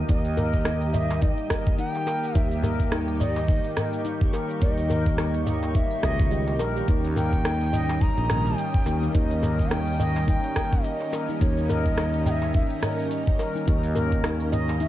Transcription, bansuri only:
0.08 0.95 D#5 loud
0.93 1.23 E5 loud
1.22 1.78 D#5 medium
1.78 1.90 F#5 loud
1.90 2.37 G5 loud
2.35 2.93 E5 medium
3.20 3.35 D5 loud
3.35 4.01 D#5 loud
4.62 5.43 D#5 loud
5.75 6.33 E5 loud
6.31 6.76 D#5 loud
7.17 8.03 G5 loud
8.01 8.60 A#5 loud
8.58 9.03 G5 loud
9.15 9.73 D#5 loud
9.71 10.27 G5 loud
10.28 10.86 G5 loud
10.84 11.29 D#5 loud
11.41 11.71 C#5 medium
11.70 12.25 D#5 loud
12.26 12.32 G5 medium
12.31 12.52 E5 loud
12.55 12.84 E5 loud
12.83 13.10 D#5 medium
13.11 13.52 D#5 medium
13.68 14.48 D#5 medium
14.81 14.88 E5 loud

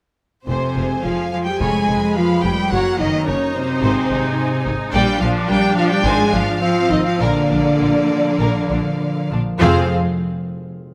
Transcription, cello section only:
0.47 1.00 C3 soft
1.04 1.31 F3 medium
1.32 1.46 F3 soft
1.46 1.61 G3 soft
1.60 2.15 G#3 medium
2.16 2.44 F3 medium
2.44 2.72 G3 medium
2.71 2.99 F#3 medium
2.99 3.27 D#3 medium
3.27 3.35 C#3 soft
3.55 4.63 C3 medium
4.93 5.19 G3 medium
5.21 5.49 F3 medium
5.49 5.77 G3 medium
5.76 5.90 F3 medium
5.91 6.05 G3 medium
6.05 6.33 G#3 medium
6.33 6.61 F3 medium
6.62 6.90 F3 medium
6.91 7.06 D#3 medium
7.05 7.20 F3 medium
7.20 9.30 D3 medium
9.61 9.94 F3 medium

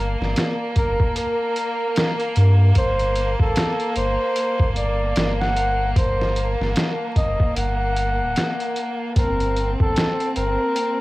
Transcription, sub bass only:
0.00 0.15 G1 medium
0.20 0.34 G1 loud
0.76 0.97 G1 medium
2.37 2.72 G2 loud
2.76 3.35 G1 loud
3.40 3.54 G1 loud
3.96 4.17 G1 medium
4.60 5.13 G1 medium
5.16 5.93 G1 medium
5.96 6.55 G1 loud
6.60 6.74 G1 loud
7.16 7.37 G1 medium
7.56 8.22 G1 loud
8.20 8.34 D1 medium
9.16 9.75 G1 loud
9.80 9.94 G1 loud
10.36 10.57 G1 medium

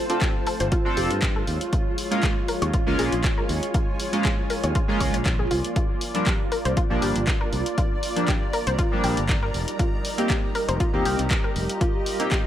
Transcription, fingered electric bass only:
0.60 0.68 G1 loud
0.97 1.07 F1 loud
1.11 1.42 G2 medium
1.47 1.57 D#2 medium
2.62 2.70 D#2 loud
2.87 2.95 C#2 loud
2.99 3.08 A#1 medium
3.12 3.21 A#1 medium
3.49 3.59 D#2 medium
4.64 4.72 D#2 loud
5.00 5.10 C#2 loud
5.14 5.45 A#1 medium
5.51 5.60 C2 medium
6.65 6.73 C2 loud
6.90 6.99 A#1 loud
7.02 7.12 G1 medium
7.16 7.24 G1 medium
7.53 7.62 C2 medium
8.67 8.75 C2 loud
9.04 9.13 A#1 loud
9.17 9.49 G1 medium
9.54 9.64 F1 medium
10.69 10.77 F1 loud
10.94 11.02 D#2 loud
11.05 11.15 C2 medium
11.19 11.27 C2 medium
11.56 11.65 F1 medium

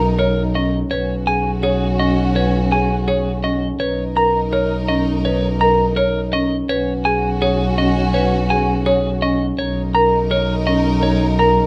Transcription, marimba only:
0.19 0.42 C#5 medium
0.55 0.78 C#4 medium
0.91 1.15 B4 medium
1.27 1.51 G#4 medium
1.63 1.87 C#5 medium
2.00 2.23 C#4 medium
2.35 2.59 B4 medium
2.72 2.95 G#4 medium
3.08 3.31 C#5 medium
3.44 3.67 C#4 medium
3.80 4.03 B4 medium
4.16 4.40 A#4 medium
4.53 4.76 C#5 medium
4.88 5.12 C#4 medium
5.25 5.48 B4 medium
5.61 5.84 A#4 medium
5.97 6.20 C#5 medium
6.33 6.57 C#4 medium
6.69 6.93 B4 medium
7.05 7.29 G#4 medium
7.42 7.65 C#5 medium
7.78 8.01 C#4 medium
8.14 8.37 B4 medium
8.50 8.73 G#4 medium
8.86 9.10 C#5 loud
9.22 9.46 C#4 medium
9.95 10.18 A#4 medium
10.31 10.54 C#5 medium
10.67 10.90 C#4 medium
11.39 11.62 A#4 medium

